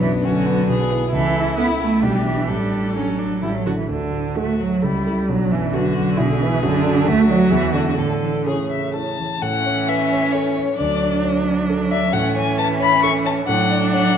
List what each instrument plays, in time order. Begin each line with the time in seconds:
Already playing: grand piano B1, viola B3, violin D4
0.02 grand piano F#2, cello E3
0.24 cello D3, grand piano F#3 F#4 B4, viola C#4, violin F#4
0.47 grand piano F#3, viola B3
0.68 grand piano B1, viola B3, violin G#4
0.91 grand piano E4 B4
1.12 grand piano C#2, cello E3, viola E4, violin A4
1.35 grand piano C#3
1.58 grand piano A3 E4 A4, cello B3, violin E4
1.80 grand piano A3, cello A3
2.02 grand piano B1, cello G3, viola D4, violin G4
2.25 cello E3, grand piano D4 G4
2.48 grand piano A1, cello G3, viola D4, violin A4
2.73 grand piano A2
2.96 cello F#3, viola C#4, grand piano D4 A4
3.19 viola D4, grand piano D4
3.42 grand piano A1, cello G3, viola E4
3.54 cello F#3
3.65 cello D3, grand piano E4 A4, viola F#4
3.78 cello E3
3.89 grand piano D2, cello D3
4.12 grand piano A2
4.36 cello A3, grand piano A3 F#4 A4, viola F#4, violin F#4
4.60 cello F#3
4.82 grand piano C#2, cello G3, violin E4, viola A4
5.06 grand piano E4 A4
5.29 grand piano B1, cello F#3, violin D4
5.51 grand piano F#2, cello E3
5.74 cello D3, grand piano F#3 F#4 B4, viola F#4, violin F#4
5.97 grand piano F#3
6.18 grand piano B1, viola E4, violin G#4
6.42 cello E3, grand piano E4 B4
6.63 grand piano F#2, cello D3, viola F#4
6.85 grand piano F#4 D5
7.07 grand piano D2, cello A3, viola F#4, violin F#4
7.28 cello F#3, grand piano F#4 D5
7.50 grand piano E2, cello E3, viola G#4
7.73 cello D3, grand piano E4 D5
7.97 grand piano A2, cello D3, violin A4
8.22 grand piano E3
8.47 cello C#3, grand piano A3 E4 C#5, violin G#4, viola A4
8.71 grand piano A3, violin E5
8.94 grand piano A3 E4 C#5, viola A4, violin A5
9.19 grand piano E3
9.42 grand piano A2, cello E3, viola C#4, violin F#5
9.66 grand piano C#5
9.89 grand piano B4, violin E5
10.12 grand piano C#5
10.33 grand piano A4, violin C#5
10.57 grand piano C#5
10.78 grand piano D2, cello F#3, viola D4, violin D5
11.02 grand piano D5
11.24 grand piano C#5
11.47 grand piano D5
11.70 grand piano A4
11.91 grand piano D5, violin E5
12.13 grand piano A2, cello E3, viola C#4, violin F#5
12.36 grand piano C#5, violin G#5
12.58 grand piano B4, violin A5
12.80 grand piano C#5, violin B5
13.03 grand piano A4, violin C#6
13.25 grand piano C#5, violin A5
13.47 grand piano A2, cello F#3, viola D4, violin F#5
13.71 grand piano D5
13.93 grand piano C#5, violin F#5